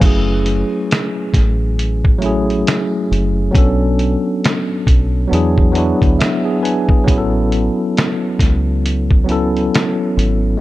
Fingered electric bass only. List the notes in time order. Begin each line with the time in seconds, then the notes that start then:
0.02 F#1
1.34 A1
3.11 F#1
3.55 B1
4.87 B1
5.32 E2
6.02 D2
7.08 A1
8.40 C#2
10.17 G#1